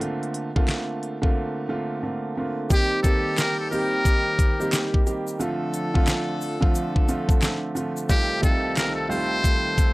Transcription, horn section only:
2.70 D#3 C4 G4
5.39 F3 D4 A4
8.08 D#3 C4 A4

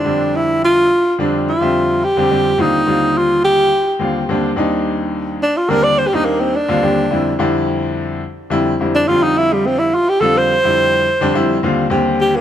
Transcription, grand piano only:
0.04 F2 D3 G3 C4 D4
1.18 F2 D3 G3 C4 D4
1.61 F2 D3 G3 C4 E5
2.17 F2 D3 G3 C4 G4
2.30 F2 D3 G3 C4 G4
2.58 D#2 D3 G3 C4 F4
2.86 D#2 D3 G3 C4 F4
3.99 D#2 D3 G3 C4 F4
4.29 D#2 D3 G3 C4 D4
4.56 D#2 G3 C4 D4 D#4
5.69 D#2 D3 G3 C4 D4
6.13 D#2 G3 C4 D4 D#4
6.69 D#2 D3 G3 C4 F4
6.83 D#2 D3 G3 C4 G4
7.10 F2 D3 G3 C4 E4
7.39 F2 D3 G3 C4 E4
8.50 F2 D3 G3 C4 E4
8.80 F2 D3 G3 C4 E4
9.08 F2 D3 G3 C4 F4
10.20 F2 D3 G3 C4 F4
10.64 F2 D3 G3 C4 E4
11.21 F2 D3 G3 C4 D4
11.34 F2 D3 G3 C4 E4
11.63 D#2 D3 G3 C4 F4
11.90 D#2 D3 G3 C4 G4

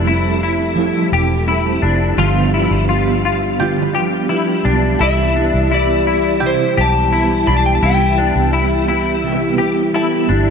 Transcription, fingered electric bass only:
Already playing: F1
1.12 E1
1.83 F1
2.17 G1
2.71 G1
4.65 B1
5.00 C2
5.54 C2
6.78 B1
7.48 B1
7.83 C2
8.36 C2
10.29 G1

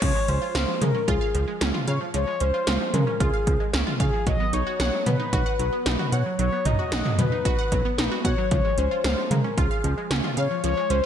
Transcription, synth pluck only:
0.02 F3
0.15 G#3
0.28 C#4
0.42 F4
0.55 F5
0.68 F3
0.81 G#3
0.95 C#4
1.08 F4
1.21 F5
1.34 F3
1.48 G#3
1.61 C#4
1.74 F4
1.88 F5
2.01 F3
2.14 F3
2.27 G#3
2.41 C#4
2.54 F4
2.67 F5
2.80 F3
2.94 G#3
3.07 C#4
3.20 F4
3.33 F5
3.47 F3
3.60 G#3
3.74 C#4
3.87 F4
4.00 F5
4.13 F3
4.27 F#3
4.40 B3
4.53 D#4
4.67 F#4
4.80 F#5
4.93 F#3
5.06 B3
5.20 D#4
5.33 F#4
5.46 F#5
5.59 F#3
5.73 B3
5.86 D#4
5.99 F#4
6.12 F#5
6.26 F#3
6.39 F#3
6.52 B3
6.66 D#4
6.79 F#4
6.92 F#5
7.05 F#3
7.19 B3
7.32 D#4
7.45 F#4
7.59 F#5
7.72 F#3
7.85 B3
7.98 D#4
8.11 F#4
8.25 F#5
8.38 F#3
8.51 F3
8.65 G#3
8.78 C#4
8.91 F4
9.04 F5
9.18 F3
9.31 G#3
9.44 C#4
9.57 F4
9.71 F5
9.84 F3
9.98 G#3
10.11 C#4
10.24 F4
10.37 F5
10.51 F3
10.64 F3
10.77 G#3
10.90 C#4

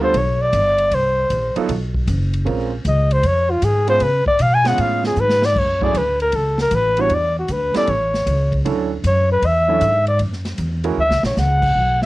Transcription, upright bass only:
Already playing: D2
0.14 B1
0.53 G1
0.91 C2
1.30 A#1
1.56 muted upright bass stroke
1.69 B1
2.07 F#1
2.46 A#1
2.85 C#2
3.23 F2
3.62 G#2
4.00 C#3
4.26 muted upright bass stroke
4.39 B2
4.78 A2
5.17 G#2
5.56 F#2
5.94 D2
6.33 C#2
6.71 A1
7.10 E2
7.49 D2
7.75 muted upright bass stroke
7.88 A1
8.26 C#2
8.65 D2
9.04 F#2
9.42 E2
9.81 G#2
10.19 F#2
10.58 E2
10.97 D2
11.10 C#2
11.23 A#1
11.37 C#2
11.75 B1

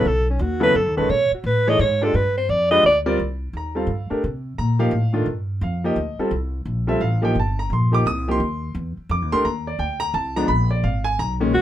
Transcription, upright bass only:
0.05 B1
0.39 D#2
0.75 F#2
0.86 D#2
0.98 B1
1.09 B2
1.31 muted upright bass stroke
1.44 A2
1.79 G#2
2.14 G2
2.49 F2
2.83 D2
3.19 C2
3.53 D#2
3.87 G2
4.11 muted upright bass stroke
4.24 C3
4.59 A#2
4.91 A2
5.26 G2
5.61 F2
5.96 D2
6.19 muted upright bass stroke
6.31 C2
6.65 A#1
7.00 A1
7.35 G1
7.70 A#1
8.06 C2
8.40 D#2
8.75 E2
8.97 muted upright bass stroke
9.09 F2
9.22 D#2
9.33 C2
9.45 D#2
9.79 D2
10.14 C2
10.48 A#1
10.84 G#1
11.19 B1
11.53 D#2

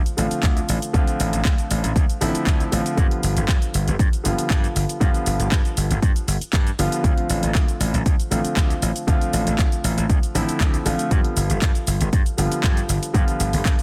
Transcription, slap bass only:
0.18 A1
0.43 D2
0.69 A1
0.94 D2
1.20 A1
1.33 A1
1.45 D2
1.71 A1
1.84 A1
1.96 D2
2.21 A1
2.47 D2
2.73 A1
2.98 G2
3.23 G1
3.37 G1
3.74 G1
3.88 G1
3.99 G2
4.25 G1
4.50 G2
4.76 G1
5.01 G2
5.26 G1
5.39 G1
5.52 G2
5.77 G1
5.90 G1
6.02 G2
6.28 G1
6.41 muted slap bass stroke
6.53 G2
6.79 G1
7.04 D2
7.30 A1
7.43 A1
7.55 D2
7.80 A1
7.94 A1
8.31 A1
8.57 D2
8.82 A1
9.08 D2
9.33 A1
9.46 A1
9.59 D2
9.84 A1
9.97 A1
10.10 D2
10.35 A1
10.48 muted slap bass stroke
10.60 D2
10.86 A1
11.11 G2
11.36 G1
11.50 G1
11.62 G2
11.87 G1
12.01 G1
12.13 G2
12.38 G1
12.64 G2
12.89 G1
13.14 G2
13.40 G1
13.53 G1
13.65 G2

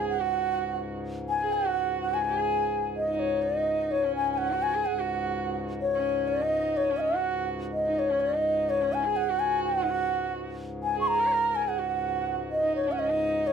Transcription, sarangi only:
Already playing: G#4
0.20 F#4
1.42 G#4
1.65 F#4
2.13 F#4
2.25 G#4
3.08 D#4
3.56 D#4
4.04 C#4
4.51 F#4
4.75 G#4
4.99 F#4
5.95 C#4
6.42 D#4
6.91 C#4
7.15 F#4
7.87 D#4
8.10 C#4
8.34 D#4
8.82 C#4
9.04 G#4
9.30 F#4
9.77 F#4
9.83 D#4
9.91 F#4
10.96 G#4
11.20 A#4
11.26 C#5
11.33 A#4
11.67 G#4
11.78 F#4
12.62 D#4
12.87 C#4
13.10 D#4

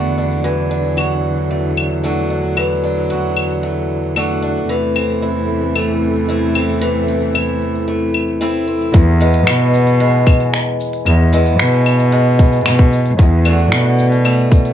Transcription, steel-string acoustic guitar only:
Already playing: E2 A3 D4 F#4
0.18 D4
0.44 E3
0.71 D4
0.97 F#4
1.51 A3
2.04 A3 D4 F#4
2.30 D4
2.57 E3
2.84 D4
3.10 F#4
3.63 A3
4.16 A3 D4 F#4
4.42 D4
4.69 E3
4.96 C4
5.22 E4
5.75 A3
6.29 A3 C4 E4
6.55 C4
6.82 E3
7.08 C4
7.35 E4
7.88 A3
8.41 A3 C4 E4
8.67 C4
8.94 E2
9.20 G#3 B3 E4
10.00 G#3
11.06 E2
11.33 G#3 B3 E4
12.12 G#3
13.19 E2
13.45 A3 D4 F#4
14.25 A3

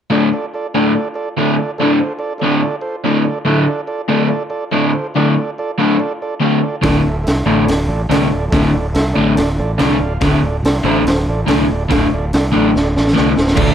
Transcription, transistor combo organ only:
0.10 F4 A4 D5
0.32 F4 A4 D5
0.54 F4 A4 D5
0.74 F4 A4 D5
0.94 F4 A4 D5
1.14 F4 A4 D5
1.38 F4 A4 D5
1.57 F4 A4 D5
1.78 F4 A4 D5
1.98 F4 A4 C5
2.19 F4 A4 D5
2.38 F4 A4 D5
2.61 F4 A4 D5
2.81 F4 A4 C5
3.05 F4 A4 D5
3.24 F4 A4 D5
3.45 F4 A4 E5
3.67 F4 A4 D5
3.87 F4 A4 D5
4.09 F4 A4 D5
4.28 F4 A4 D5
4.50 F4 A4 D5
4.71 F4 A4 D5
4.92 F4 A4 C5
5.14 F4 A4 D5
5.36 F4 A4 D5
5.58 F4 A4 D5
5.79 F4 A4 F5
5.99 F4 A4 D5
6.22 F4 A4 D5
6.43 F4 A4 F5
6.61 F4 A4 D5
6.83 F4 A4 D5
7.02 F4 A4 E5
7.23 F4 A4 E5
7.45 F4 A4 D5
7.65 F4 A4 D5
7.88 F4 A4 D5
8.10 F4 A4 D5
8.31 F4 A4 D5
8.50 F4 A4 E5
8.73 F4 A4 D5
8.93 F4 A4 E5
9.13 F4 A4 D5
9.35 F4 A4 D5
9.59 F4 A4 D5
9.78 F4 A4 D5 F5
10.00 F4 A4 D5
10.23 F4 A4 E5
10.45 F4 A4 D5
10.65 F4 A4 D5
10.83 F4 A4 C5
11.07 F4 A4 C5
11.28 F4 A4 D5
11.48 F4 A4 D5
11.70 F4 A4 D5
11.91 F4 A4 F5
12.13 F4 A4 D5
12.34 F4 A4 D5
12.55 F4 A4 D5
12.76 F4 A4 D5
12.96 F4 A4 D5
13.17 F4 A4 D5
13.37 F4 A4 C5
13.56 F4 A4 D5

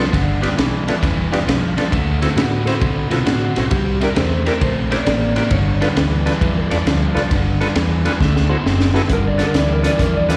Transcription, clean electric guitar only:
2.37 F#4
2.66 A4
3.11 F4
3.26 F#4
3.57 F#4
3.68 G4
4.03 A#4
4.17 C5
4.48 A#4
4.62 C5
4.92 D5
5.53 C#5
5.83 B4
9.13 A#4
9.28 D5
9.43 A#4
9.59 D5
9.73 A#4
9.87 D5
10.01 A#4
10.17 D5
10.32 B4

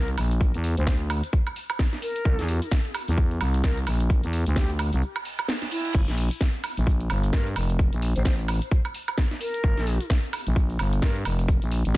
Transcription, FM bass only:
Already playing: C2
0.18 A#1
0.54 E2
0.77 D2
2.25 C2
2.39 E2
3.08 E2
3.41 C2
3.87 A#1
4.23 E2
4.47 D2
4.93 C2
5.95 G1
6.08 A#1
6.77 A#1
7.10 G1
7.33 G2
7.56 F1
7.93 A#1
8.16 A1
9.64 G1
9.77 A#1
10.47 A#1
10.79 G1
11.02 G2
11.25 F1
11.62 A#1
11.85 A1

